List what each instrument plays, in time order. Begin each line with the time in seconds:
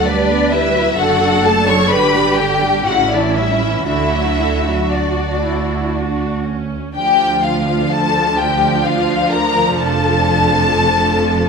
Already playing: double bass section D2, viola section D4
0.06 viola section G3, violin section D4 D5, cello section B4
0.30 viola section B3
0.52 viola section G3, violin section E4 E5
0.75 viola section F#3
0.97 double bass section F#1, viola section D3 D4, violin section F#4 F#5, cello section A4
1.20 viola section F#3
1.43 viola section A3, violin section A4 A5
1.67 viola section F#3, violin section C#5 C#6
1.88 double bass section G1, viola section D3, cello section G4, violin section B4 B5
2.14 viola section G3
2.36 viola section D3, violin section G4 G5
2.63 viola section G3
2.85 double bass section A1, viola section C#3 C#4, cello section E4, violin section F#4 F#5
3.11 viola section E3, violin section D4 D5
3.36 viola section G3, violin section E4 E5
3.63 viola section E3
3.86 double bass section D2, viola section D3 D4, violin section E4 E5, cello section F#4
4.15 viola section F#3
4.41 viola section D3
4.66 viola section F#3
4.90 violin section D4 D5, viola section F#4
5.43 viola section E4
5.95 viola section D4
6.46 viola section C#4
6.95 double bass section D2, cello section D2, viola section F3 D4, violin section G4 G5
7.43 violin section F4 F5
7.91 violin section A4 A5
8.37 violin section G4 G5
8.84 violin section F4 F5
9.30 violin section A#4 A#5
9.76 double bass section F1, cello section F2, violin section A4 A5